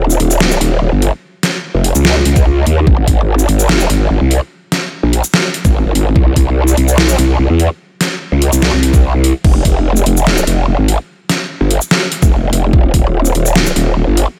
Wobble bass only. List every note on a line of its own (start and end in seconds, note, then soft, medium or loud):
0.00 0.18 D#1 loud
0.20 0.59 D#1 loud
0.61 0.80 D#1 loud
0.82 0.91 D#1 loud
0.92 1.11 G1 loud
1.75 1.93 F1 loud
1.95 2.24 C#2 loud
2.25 2.65 C#2 loud
2.66 2.85 D#2 loud
2.87 3.06 G#1 loud
3.08 3.47 G#1 loud
3.49 3.88 G#1 loud
3.90 4.09 G#1 loud
4.10 4.19 G#1 loud
4.21 4.40 C2 loud
5.03 5.22 A#1 loud
5.65 5.84 G#1 loud
5.85 5.94 G#1 loud
5.95 6.14 G#1 loud
6.16 6.35 C2 loud
6.36 6.76 C2 loud
6.77 7.17 C2 loud
7.18 7.37 C2 loud
7.39 7.48 C2 loud
7.50 7.69 E2 loud
8.32 8.51 C#2 loud
8.53 8.71 C2 loud
8.73 9.33 C2 loud
9.44 9.63 F1 loud
9.65 10.05 F1 loud
10.06 10.46 F1 loud
10.47 10.66 F1 loud
10.68 10.77 F1 loud
10.79 10.97 G#1 loud
11.61 11.80 G1 loud
12.22 12.41 F1 loud
12.43 12.51 F1 loud
12.53 12.72 F1 loud
12.73 12.92 D#1 loud
12.94 13.33 D#1 loud
13.35 13.74 D#1 loud
13.76 13.95 D#1 loud
13.97 14.06 D#1 loud
14.07 14.26 G1 loud